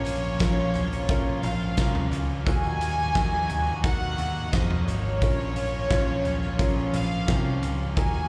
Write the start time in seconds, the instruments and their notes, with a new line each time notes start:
Already playing: picked electric bass A#1, string section F3 A#3 C#4 F4, grand piano C#4 F4 A#4, violin section C#5
0.04 overdriven electric guitar A#3 C#4 F4, closed hi-hat, tambourine
0.23 tambourine
0.39 picked electric bass A#1, overdriven electric guitar F3 A#3 C#4 F4, grand piano C#4 F4 A#4, kick, snare, closed hi-hat, tambourine
0.74 closed hi-hat, floor tom, tambourine
0.93 closed hi-hat
1.08 overdriven electric guitar A#2 F3 A#3 C#4 F4, grand piano C#4 F4 A#4, kick, closed hi-hat, tambourine
1.42 picked electric bass A#1, violin section F5, closed hi-hat, tambourine
1.60 tambourine
1.76 picked electric bass C2, overdriven electric guitar F3 A#3 C#4 F4, grand piano C#4 F4 A#4, kick, snare, closed hi-hat, tambourine
1.95 floor tom
2.11 picked electric bass C#2, overdriven electric guitar A#3 C#4 F4, closed hi-hat, tambourine
2.45 picked electric bass D#2, grand piano A#2 D#4 F#4 A#4, string section D#3 F#4, overdriven electric guitar D#3 A#3 D#4 F#4, violin section G#5, kick, closed hi-hat, tambourine
2.64 tambourine
2.80 overdriven electric guitar A#3 D#4 F#4, closed hi-hat, tambourine
2.99 tambourine
3.14 picked electric bass D#2, overdriven electric guitar D#3 A#3 D#4 F#4, grand piano D#4 F#4 A#4, kick, snare, closed hi-hat, tambourine
3.49 closed hi-hat, floor tom, tambourine
3.67 tambourine
3.83 overdriven electric guitar D#3 A#3 D#4 F#4, grand piano D#4 F#4 A#4, violin section F#5, kick, closed hi-hat, tambourine
4.18 picked electric bass D#2, closed hi-hat, tambourine
4.37 tambourine
4.51 picked electric bass F2, overdriven electric guitar D#3 A#3 D#4 F#4, grand piano D#4 F#4 C5, violin section D#5, kick, snare, closed hi-hat, tambourine
4.71 floor tom
4.86 picked electric bass G#1, overdriven electric guitar A#3 D#4 F#4, violin section C#5, closed hi-hat, tambourine
5.19 picked electric bass A#1, overdriven electric guitar A#2 F3 A#3 C#4 F4, string section F3 C#4 F4, grand piano C#4 F4 A#4, kick, closed hi-hat, tambourine
5.39 tambourine
5.55 overdriven electric guitar A#3 C#4 F4, closed hi-hat, tambourine
5.89 picked electric bass A#1, overdriven electric guitar F3 A#3 C#4 F4, grand piano C#4 F4 C#5, kick, snare, closed hi-hat, tambourine
6.23 overdriven electric guitar A#3 C#4 F4, closed hi-hat, floor tom, tambourine
6.43 tambourine
6.58 overdriven electric guitar A#2 F3 A#3 C#4 F4, grand piano C#4 F4 A#4, kick, closed hi-hat, tambourine
6.93 picked electric bass A#1, violin section F5, closed hi-hat, tambourine
7.11 tambourine
7.27 picked electric bass C2, overdriven electric guitar F3 A#3 C#4 F4, grand piano C4 F4 A#4, kick, snare, closed hi-hat, tambourine
7.34 grand piano C#4
7.61 picked electric bass C#2, overdriven electric guitar A#3 C#4 F4, closed hi-hat, tambourine
7.95 picked electric bass D#2, grand piano A#2 D#4 F#4 A#4, overdriven electric guitar D#3 A#3 D#4 F#4, string section D#3 A#3 F#4, violin section G#5, kick, closed hi-hat, tambourine
8.14 tambourine